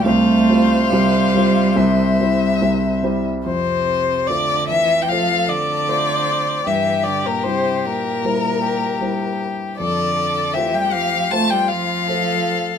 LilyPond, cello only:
\new Staff \with { instrumentName = "Cello" } { \clef bass \time 4/4 \key f \major \tempo 4 = 76 a4 g2 r4 | c4 d8 e8 f8 d4. | e8 d16 bes,16 c8 bes,2 r8 | d4 e16 g16 f8 a16 g16 f4. | }